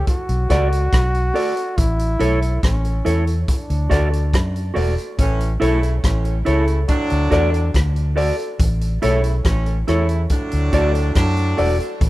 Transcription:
0.07 trombone F#4, kick, closed hi-hat
0.29 fingered electric bass B1, closed hi-hat
0.49 fingered electric bass C#2, upright piano F#4 A4 D5, clean electric guitar F#4 A4 D5, kick, cross-stick, closed hi-hat
0.70 muted clean electric guitar stroke, closed hi-hat
0.93 fingered electric bass B1, kick, cross-stick, closed hi-hat
1.15 closed hi-hat
1.34 clean electric guitar F#4 A4 D5, upright piano F#4 A4 D5, open hi-hat
1.56 upright piano A4 D5, closed hi-hat
1.78 fingered electric bass A1, trombone E4, kick, closed hi-hat
1.99 closed hi-hat
2.19 fingered electric bass B1, upright piano E4 A4 C#5, clean electric guitar E4 A4 C#5, closed hi-hat
2.42 closed hi-hat
2.63 fingered electric bass A1, trombone C#4, kick, cross-stick, closed hi-hat
2.85 upright piano A4 C#5, closed hi-hat
3.05 fingered electric bass E2, clean electric guitar E4 A4 C#5, upright piano E4 A4 C#5, closed hi-hat
3.27 closed hi-hat
3.48 trombone D4, kick, closed hi-hat
3.70 fingered electric bass D2, closed hi-hat
3.90 fingered electric bass D2, clean electric guitar F#4 A4 D5, upright piano F#4 A4 D5, kick, cross-stick, closed hi-hat
4.11 muted clean electric guitar stroke, closed hi-hat
4.34 fingered electric bass F#2, kick, cross-stick, closed hi-hat
4.56 closed hi-hat
4.74 fingered electric bass E1, clean electric guitar F#4 A4 D5, upright piano F#4 A4 D5, open hi-hat
4.98 closed hi-hat
5.19 fingered electric bass A1, horn section A2 E3 C#4, kick, closed hi-hat
5.40 closed hi-hat
5.60 fingered electric bass B1, horn section C#3 A3 E4, clean electric guitar E4 A4 C#5, upright piano E4 A4 C#5, closed hi-hat
5.83 closed hi-hat
6.03 fingered electric bass A1, horn section A2 E3 C#4, kick, cross-stick, closed hi-hat
6.25 upright piano A4 C#5, closed hi-hat
6.45 fingered electric bass C#2, horn section C#3 A3 E4, clean electric guitar E4 A4 C#5, upright piano E4 A4 C#5, closed hi-hat
6.68 closed hi-hat
6.88 horn section A2 F#3 D4, kick, closed hi-hat
7.10 fingered electric bass D2, closed hi-hat
7.31 fingered electric bass E2, clean electric guitar F#4 A4 D5, upright piano F#4 A4 D5, kick, cross-stick, closed hi-hat
7.52 muted clean electric guitar stroke, closed hi-hat
7.74 fingered electric bass D2, kick, cross-stick, closed hi-hat
7.96 closed hi-hat
8.16 clean electric guitar F#4 A4 D5, upright piano F#4 A4 D5, open hi-hat
8.39 upright piano A4 D5, closed hi-hat
8.60 fingered electric bass A1, kick, closed hi-hat
8.81 closed hi-hat
9.02 fingered electric bass B1, horn section C#3 A3 E4, upright piano E4 A4 C#5, clean electric guitar E4 A4 C#5, closed hi-hat
9.24 closed hi-hat
9.44 fingered electric bass A1, horn section A2 E3 C#4, kick, cross-stick, closed hi-hat
9.66 upright piano A4 C#5, closed hi-hat
9.87 fingered electric bass E2, horn section C#3 A3 E4, upright piano E4 A4 C#5, clean electric guitar E4 A4 C#5, cross-stick, closed hi-hat
10.09 closed hi-hat
10.30 horn section A2 F#3 D4, kick, closed hi-hat
10.51 fingered electric bass D2, closed hi-hat
10.73 fingered electric bass D2, upright piano F#4 A4 D5, clean electric guitar F#4 A4 D5, kick, closed hi-hat
10.94 muted clean electric guitar stroke, closed hi-hat
11.15 fingered electric bass F#2, horn section A2 F#3 D4, kick, cross-stick, closed hi-hat
11.37 closed hi-hat
11.57 fingered electric bass E1, upright piano F#4 A4 D5, clean electric guitar F#4 A4 D5, open hi-hat
11.80 closed hi-hat
12.01 fingered electric bass A1, kick, closed hi-hat

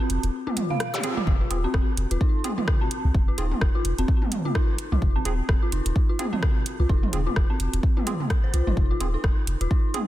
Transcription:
0.00 synth bell C4
0.10 sub bass F1, closed hi-hat
0.23 sub bass D#1, closed hi-hat
0.47 synth bell F4, high tom
0.57 closed hi-hat, mid tom
0.70 synth bell F5, high tom
0.80 cross-stick, closed hi-hat
0.94 synth bell G4, zap
1.04 synth stab C4 F4 G#4, closed hi-hat
1.17 synth bell F4, mid tom
1.27 sub bass F1, kick
1.41 synth bell F4
1.50 sub bass D#1, synth stab C4 F4 G#4, closed hi-hat
1.64 synth bell C4
1.74 sub bass F1, kick, cross-stick
1.97 sub bass F1, closed hi-hat
2.11 sub bass D#1, synth bell F4, closed hi-hat
2.21 synth bell D#4, kick
2.44 synth stab C4 F4 G#4, closed hi-hat, high tom
2.58 synth bell F4, mid tom
2.68 kick, cross-stick
2.81 synth bell C4
2.91 closed hi-hat
3.05 sub bass C2
3.14 sub bass F1, kick
3.28 synth bell F4
3.38 sub bass D#1, synth stab C4 F4 G#4, synth bell D#4, closed hi-hat
3.52 high tom
3.61 sub bass F1, kick, cross-stick
3.75 synth bell F4
3.85 sub bass F1, closed hi-hat
3.98 sub bass D#1, synth bell C4, closed hi-hat
4.08 kick
4.22 high tom
4.32 closed hi-hat, mid tom
4.45 synth bell F4, high tom
4.55 synth bell D#4, kick, cross-stick
4.78 closed hi-hat
4.92 sub bass C2, synth bell F4, mid tom
5.02 sub bass F1, kick
5.16 synth bell C4
5.25 sub bass D#1, synth stab C4 F4 G#4, closed hi-hat
5.49 sub bass F1, kick, cross-stick
5.63 synth bell F4
5.72 sub bass F1, synth bell D#4, closed hi-hat
5.86 sub bass D#1, closed hi-hat
5.96 kick
6.09 synth bell F4
6.19 synth stab C4 F4 G#4, closed hi-hat, high tom
6.33 synth bell C4, mid tom
6.43 kick, cross-stick
6.66 closed hi-hat
6.80 sub bass C2, synth bell F4
6.89 sub bass F1, synth bell D#4, kick
7.03 mid tom
7.13 sub bass D#1, synth stab C4 F4 G#4, closed hi-hat
7.27 synth bell F4, high tom
7.36 sub bass F1, kick, cross-stick
7.50 synth bell C4
7.60 sub bass F1, closed hi-hat
7.74 sub bass D#1, closed hi-hat
7.83 kick
7.97 synth bell F4, high tom
8.07 synth stab C4 F4 G#4, closed hi-hat, mid tom
8.20 high tom
8.30 kick, cross-stick, closed hi-hat
8.44 synth bell C5
8.54 sub bass C2, synth bell F4, closed hi-hat
8.67 sub bass G#1, synth bell D#4, mid tom
8.77 sub bass F1, kick
8.91 synth bell F4
9.00 sub bass D#1, synth stab C4 F4 G#4, closed hi-hat
9.14 synth bell D#4
9.24 sub bass F1, kick, cross-stick
9.47 sub bass F1, closed hi-hat
9.61 sub bass D#1, synth bell F4, closed hi-hat
9.71 synth bell D#4, kick
9.94 synth stab C4 F4 G#4, closed hi-hat, high tom

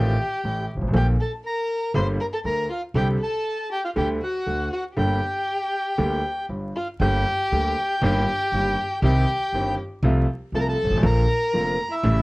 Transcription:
Already playing: upright bass A1, grand piano A1 A2 D#3 A3 C4 F4, violin G4, bandoneon G5
0.44 upright bass A1, grand piano A1 A2
0.75 upright bass G1, grand piano G1
0.81 upright bass G#1, grand piano G#1
0.87 upright bass A1, grand piano A1
0.93 upright bass A#1, grand piano A#1 A#2 D3 F3 A#3 F4, violin G4, bandoneon G5
1.20 violin A4, bandoneon A5
1.45 violin A#4, bandoneon A#5
1.94 upright bass G1, grand piano G1 G2 D3 G3 A#3 G4, violin C5, bandoneon C6
2.20 violin A#4, bandoneon A#5
2.33 violin A4, bandoneon A5
2.44 upright bass D2, grand piano D2 D3, violin A#4, bandoneon A#5
2.70 violin F4, bandoneon F5
2.94 upright bass C2, grand piano C2 C3 D3 G3 C4 G4, violin G4, bandoneon G5
3.20 violin A4, bandoneon A5
3.72 violin G4, bandoneon G5
3.84 violin F4, bandoneon F5
3.96 upright bass D2, grand piano D2 D3 G3 A3 G4, violin G4, bandoneon G5
4.22 violin F#4, bandoneon F#5
4.46 upright bass D2, grand piano D2 D3
4.73 violin F#4, bandoneon F#5
4.97 upright bass G1, grand piano G1 G2 D3 G3 A#3 G4, violin G4, bandoneon G5
5.98 upright bass D2, grand piano D2 D3 G3 A#3 G4
6.49 upright bass G1, grand piano G1 G2
6.76 violin F4, bandoneon F5
7.00 upright bass G1, grand piano G1 G2 D3 G3 A#3 G4, violin G4, bandoneon G5
7.51 upright bass D2, grand piano D2 D3 G3 A#3 G4
8.01 upright bass G1, grand piano G1 G2 D#3 G3 A#3 G4, violin G4, bandoneon G5
8.52 upright bass G1, grand piano G1 G2 D#3 G3 A#3 G4
9.02 upright bass C2, grand piano C2 C3 D#3 G3 C4 G4, violin G4, bandoneon G5
9.53 upright bass G1, grand piano G1 G2 D#3 G3 C4 G4
10.03 upright bass C2, grand piano C2 C3 F3 A3 F4
10.52 upright bass C2, grand piano C2 C3 F3 A3 F4, violin A4, bandoneon A5
10.60 violin A#4, bandoneon A#5
10.69 violin A4, bandoneon A5
10.83 upright bass G1, grand piano G1
10.90 upright bass G#1, grand piano G#1
10.96 upright bass A1, grand piano A1
11.03 upright bass A#1, grand piano A#1 A#2 D3 F3 A#3 F4, violin A#4, bandoneon A#5
11.53 upright bass F1, grand piano F1 F2 D3 F3 A#3 F4
11.91 violin E4, bandoneon E5
12.03 upright bass A1, grand piano A1 A2 C#3 G3 A3 E4

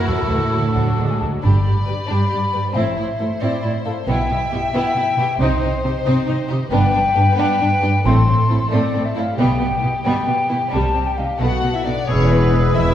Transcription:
Already playing: violin section E4 F#4
0.07 double bass section D2, cello section A2, viola section F#3 A3, french horn section F#4, oboe A4, violin section A4
0.31 double bass section D2, viola section E3
0.53 double bass section D2, viola section F#3
0.74 double bass section D2, viola section F#3, violin section D4, flute F#5
0.99 double bass section D2, viola section G#3
1.09 flute G#5
1.19 double bass section D2, viola section F#3, flute A5
1.42 double bass section G1, cello section G2, violin section D4 D5, viola section G4, flute B5
1.65 cello section G2, violin section G4, viola section G4
1.86 cello section G2, viola section G4, violin section B4
2.07 cello section G2, violin section D4, viola section G4, flute B5
2.29 cello section G2, violin section G4, viola section G4
2.52 cello section G2, viola section G4, violin section B4
2.74 double bass section A1, cello section A2, violin section C4 C5, viola section E4, flute E5
2.97 cello section A2, violin section E4, viola section E4
3.19 cello section A2, viola section E4, violin section A4
3.41 cello section A2, violin section C4, viola section E4, flute D5
3.63 cello section A2, violin section E4, viola section E4
3.73 flute E5
3.85 cello section A2, viola section E4, violin section A4, flute F5
4.07 double bass section B1, cello section B2, violin section B3 E5, viola section E4, flute G5
4.30 cello section B2, violin section E4, viola section E4
4.52 cello section B2, viola section E4, violin section G4
4.73 cello section B2, violin section B3, viola section E4, flute G5
4.96 cello section B2, viola section E4, violin section E4
5.18 cello section B2, viola section E4, violin section G4
5.39 double bass section C2, cello section C3, violin section C4 C5, viola section D#4, flute C5
5.62 cello section C3, violin section D#4, viola section D#4
5.84 cello section C3, viola section D#4, violin section G4
6.05 cello section C3, violin section C4, viola section D#4
6.26 cello section C3, viola section D#4, violin section D#4
6.48 cello section C3, viola section D#4, violin section G4
6.70 double bass section G1, cello section G2, violin section B3 B4, viola section D4, flute G5
6.92 cello section G2, violin section D4, viola section D4
7.14 cello section G2, viola section D4, violin section G4
7.36 cello section G2, violin section B3, viola section D4, flute G5
7.60 cello section G2, violin section D4, viola section D4
7.81 cello section G2, viola section D4, violin section G4
8.05 double bass section A1, cello section A2, violin section A3 A4, viola section C4, flute C6
8.27 cello section A2, violin section C4, viola section C4
8.50 cello section A2, viola section C4, violin section E4
8.70 cello section A2, violin section A3, viola section C4, flute D5
8.94 cello section A2, violin section C4, viola section C4
9.05 flute E5
9.16 cello section A2, viola section C4, violin section E4, flute F5
9.38 double bass section B1, cello section B2, violin section G3 G4, viola section B3, flute G5
9.60 cello section B2, viola section B3, violin section B3
9.80 cello section B2, viola section B3, violin section E4
10.03 cello section B2, violin section G3, viola section B3, flute G5
10.26 cello section B2, violin section B3, viola section B3
10.49 cello section B2, viola section B3, violin section E4
10.71 double bass section C2, cello section C3, violin section G3, viola section G3, flute A5
10.95 cello section C3, viola section G3, violin section C4
11.07 flute G5
11.17 cello section C3, viola section G3, violin section D#4, flute F5
11.39 double bass section B1, cello section B2, violin section A3 A4 F#5, viola section B3 F#4, flute F#5
11.60 violin section B3, viola section B3
11.65 cello section B2
11.74 viola section E4, violin section E5
11.83 viola section B3 D4, violin section D#4 D5
11.88 cello section B2
12.07 double bass section E1, cello section E2, violin section G#3 B3 C#5, french horn section G#3 E4, viola section C#4, oboe G#4, clarinet G#4, trumpet B4, flute E6
12.29 violin section G#3 B3 B4, viola section B3
12.54 violin section G#3 B3
12.75 double bass section E1, cello section E2, violin section G#3 B3 E5, french horn section G#3 E4, viola section E4, oboe E4, clarinet G#4, trumpet B4, flute E6

